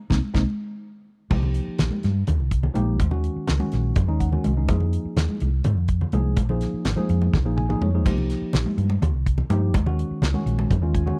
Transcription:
0.10 fingered electric bass C2, tine electric piano A#3 C4 D#4, kick, snare, high conga
0.34 fingered electric bass C2, tine electric piano A#3 C4 D#4, kick, snare, high conga
1.30 fingered electric bass C2, tine electric piano F3 A#3 D#4 G4, kick, crash, muted conga
1.43 low conga
1.54 closed hi-hat
1.68 muted fingered electric bass stroke
1.78 fingered electric bass A#1, snare, closed hi-hat, low conga
1.91 high conga
2.03 fingered electric bass G2, snare, closed hi-hat
2.27 fingered electric bass D#2, closed hi-hat, low conga
2.40 fingered electric bass C2, low conga
2.51 kick, closed hi-hat
2.63 low conga
2.74 fingered electric bass A#1, tine electric piano F3 A#3 D#4 G4, closed hi-hat, high conga
3.00 fingered electric bass D#2, kick, closed hi-hat, muted conga
3.10 tine electric piano D#3 G#3 C#4 F#4, low conga
3.24 closed hi-hat
3.36 muted fingered electric bass stroke
3.47 fingered electric bass C#2, snare, closed hi-hat, low conga
3.59 tine electric piano D#3 G#3 C#4 F#4, high conga
3.72 fingered electric bass A#1, snare, closed hi-hat
3.96 fingered electric bass F#2, kick, closed hi-hat, low conga
4.08 fingered electric bass D#2, tine electric piano D#3 G#3 C#4 D#4, low conga
4.20 tine electric piano F#5, kick, closed hi-hat
4.32 tine electric piano D#3 G#3 C#4 F#4, low conga
4.44 fingered electric bass C2, tine electric piano D#5, closed hi-hat, high conga
4.57 tine electric piano D#3 G#3 C#4 D#4
4.68 fingered electric bass F2, tine electric piano F3 A#3 D#4 G#4, kick, closed hi-hat, muted conga
4.80 low conga
4.93 closed hi-hat
5.05 muted fingered electric bass stroke
5.16 fingered electric bass D#2, snare, closed hi-hat, low conga
5.29 high conga
5.40 fingered electric bass C2, closed hi-hat
5.64 fingered electric bass G#2, closed hi-hat, low conga
5.77 fingered electric bass F2, low conga
5.88 kick, closed hi-hat
6.01 low conga
6.12 fingered electric bass C2, tine electric piano F3 A#3 D#4 G#4, closed hi-hat, high conga
6.37 fingered electric bass A#1, kick, closed hi-hat, muted conga, low conga
6.49 tine electric piano F3 A#3 D#4 G#4, low conga
6.61 snare, closed hi-hat, low conga
6.74 muted fingered electric bass stroke
6.85 fingered electric bass G#1, snare, closed hi-hat, low conga
6.96 tine electric piano F3 A#3 D#4 G#4, high conga
7.09 fingered electric bass F2, closed hi-hat
7.22 muted conga
7.33 fingered electric bass C#2, kick, snare, low conga
7.45 fingered electric bass A#1, tine electric piano F3 A#3 D#4 G#4
7.57 tine electric piano G#5, high tom
7.69 tine electric piano F3 A#3 D#4 G#4, mid tom, low conga
7.81 fingered electric bass F2, tine electric piano C#5, mid tom, high conga
7.94 tine electric piano F3 A#3 D#4 G#4
8.05 fingered electric bass C2, tine electric piano F3 A#3 D#4 G4, kick, closed hi-hat, crash, muted conga
8.18 low conga
8.30 snare, closed hi-hat
8.42 muted fingered electric bass stroke
8.53 fingered electric bass A#1, snare, closed hi-hat, low conga
8.66 high conga
8.78 fingered electric bass G2, closed hi-hat
8.90 muted conga
9.02 fingered electric bass D#2, closed hi-hat, low conga
9.14 fingered electric bass C2, low conga
9.26 kick, closed hi-hat
9.38 low conga
9.50 fingered electric bass G2, tine electric piano F3 A#3 D#4 G4, closed hi-hat, high conga
9.74 fingered electric bass D#2, kick, closed hi-hat, muted conga
9.86 tine electric piano D#3 G#3 C#4 F#4, low conga
9.99 closed hi-hat
10.11 muted fingered electric bass stroke
10.22 fingered electric bass C#2, snare, closed hi-hat, low conga
10.34 tine electric piano D#3 G#3 C#4 F#4, high conga
10.46 fingered electric bass A#1, closed hi-hat
10.59 muted conga
10.71 fingered electric bass F#2, kick, closed hi-hat, low conga
10.82 fingered electric bass D#2, tine electric piano D#3 G#3 C#4 F4, low conga
10.95 tine electric piano G#5, kick, closed hi-hat
11.06 tine electric piano D#3 G#3 C#4 F#4, low conga

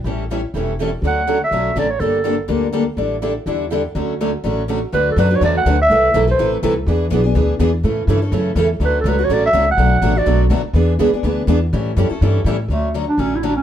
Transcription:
0.04 upright bass A1, steel-string acoustic guitar E3 G3 C#4 E4 A4
0.31 steel-string acoustic guitar E3 G3 C#4 E4 A4
0.54 upright bass E1, steel-string acoustic guitar E3 G3 C#4 E4 A4
0.80 steel-string acoustic guitar E3 G3 C#4 E4 A4
1.02 upright bass D2, steel-string acoustic guitar D3 F#3 A3 C#4 F#4 A4
1.07 clarinet F#5
1.27 steel-string acoustic guitar D3 F#3 A3 C#4 F#4 A4
1.44 clarinet E5
1.51 upright bass B1, steel-string acoustic guitar D3 F#3 A3 C#4 F#4 A4
1.75 upright bass A1, steel-string acoustic guitar D3 F#3 A3 C#4 F#4 A4, clarinet D5
1.90 clarinet C#5
2.00 upright bass G1, steel-string acoustic guitar D3 G3 A#3 D4 A4, clarinet A4
2.24 steel-string acoustic guitar D3 G3 A#3 D4 A4
2.48 upright bass D2, steel-string acoustic guitar D3 G3 A#3 D4 A4
2.73 steel-string acoustic guitar D3 G3 A#3 D4 A4
2.97 upright bass A1, steel-string acoustic guitar D3 G3 D4 E4 A4
3.22 steel-string acoustic guitar D3 G3 D4 E4 A4
3.46 upright bass E2, steel-string acoustic guitar D3 G3 D4 E4 A4
3.72 steel-string acoustic guitar D3 G3 D4 E4 A4
3.95 upright bass D2, steel-string acoustic guitar D3 F#3 A3 C#4 F#4 A4
4.21 steel-string acoustic guitar D3 F#3 A3 C#4 F#4 A4
4.44 upright bass A1, steel-string acoustic guitar D3 F#3 A3 C#4 F#4 A4
4.68 steel-string acoustic guitar D3 F#3 A3 C#4 F#4 A4
4.92 upright bass D2, steel-string acoustic guitar D3 F#3 A3 D4 F#4 B4, clarinet B4
5.11 clarinet A4
5.16 upright bass F#2, steel-string acoustic guitar D3 F#3 A3 D4 F#4 B4, clarinet B4
5.29 steel-string acoustic guitar A3 D4 F#4 B4
5.36 clarinet C#5
5.41 upright bass E2, steel-string acoustic guitar D3 F#3 A3 D4 F#4 B4
5.45 clarinet D5
5.58 clarinet F#5
5.65 upright bass D2, steel-string acoustic guitar D3 F#3 A3 D4 F#4 B4
5.82 clarinet E5
5.90 upright bass C2, steel-string acoustic guitar C3 E3 A3 E4 A4 B4
6.14 upright bass B1, steel-string acoustic guitar C3 E3 A3 E4 A4 B4
6.27 steel-string acoustic guitar A3 E4 A4 B4, clarinet C5
6.39 upright bass A1, steel-string acoustic guitar C3 E3 A3 E4 A4 B4
6.63 upright bass C2, steel-string acoustic guitar C3 E3 A3 E4 A4 B4
6.86 upright bass E2, steel-string acoustic guitar E3 B3 D4 G#4 B4
7.10 upright bass B1, steel-string acoustic guitar E3 B3 D4 G#4 B4
7.24 steel-string acoustic guitar B3 D4 G#4
7.35 upright bass D2, steel-string acoustic guitar E3 B3 D4 G#4 B4
7.59 upright bass E2, steel-string acoustic guitar E3 B3 D4 G#4 B4
7.84 upright bass A2, steel-string acoustic guitar C#3 E3 A3 C#4 E4 A4
8.07 upright bass G2, steel-string acoustic guitar C#3 E3 A3 C#4 E4 A4
8.22 steel-string acoustic guitar A3 C#4 A4
8.32 upright bass F#2, steel-string acoustic guitar C#3 E3 A3 C#4 E4 A4
8.55 upright bass E2, steel-string acoustic guitar C#3 E3 A3 C#4 E4 A4
8.80 upright bass D2, steel-string acoustic guitar D3 F#3 A3 C#4 F#4 A4
8.85 clarinet B4
9.01 upright bass C#2, clarinet A4
9.06 steel-string acoustic guitar D3 F#3 A3 C#4 F#4 A4, clarinet B4
9.19 steel-string acoustic guitar A3 C#4 F#4
9.25 clarinet C#5
9.29 upright bass A1, steel-string acoustic guitar D3 F#3 A3 C#4 F#4 A4, clarinet D5
9.46 clarinet E5
9.53 upright bass C#2, steel-string acoustic guitar D3 F#3 A3 C#4 F#4 A4
9.71 clarinet F#5
9.77 upright bass B1, steel-string acoustic guitar B2 F#3 A3 D4 F#4 B4
10.02 upright bass A1, steel-string acoustic guitar B2 F#3 A3 D4 F#4 B4
10.15 steel-string acoustic guitar A3 D4 F#4, clarinet D5
10.26 upright bass B1, steel-string acoustic guitar B2 F#3 A3 D4 F#4 B4
10.50 upright bass D2, steel-string acoustic guitar B2 F#3 A3 D4 F#4 B4
10.63 muted upright bass stroke
10.73 upright bass E2, steel-string acoustic guitar E3 B3 D4 G#4 B4
10.99 upright bass C#2, steel-string acoustic guitar E3 B3 D4 G#4 B4
11.13 steel-string acoustic guitar B3 D4 G#4, muted upright bass stroke
11.23 upright bass D2, steel-string acoustic guitar E3 B3 D4 G#4 B4
11.47 upright bass E2, steel-string acoustic guitar E3 B3 D4 G#4 B4
11.73 upright bass A2, steel-string acoustic guitar E3 G3 C#4 E4 A4
11.97 upright bass F#2, steel-string acoustic guitar E3 G3 C#4 E4 A4
12.09 steel-string acoustic guitar C#4 E4 A4, muted upright bass stroke
12.21 upright bass G2, steel-string acoustic guitar E3 G3 C#4 E4 A4
12.44 upright bass A2, steel-string acoustic guitar E3 G3 C#4 E4 A4
12.68 upright bass D2, steel-string acoustic guitar D3 F#3 A3 C#4 F#4, clarinet A3
12.94 steel-string acoustic guitar D3 F#3 A3 C#4 F#4
13.09 clarinet D4
13.18 upright bass A1, steel-string acoustic guitar D3 F#3 A3 C#4 F#4, clarinet C#4
13.36 clarinet E4
13.43 steel-string acoustic guitar D3 F#3 A3 C#4 F#4, clarinet D4
13.57 clarinet C#4

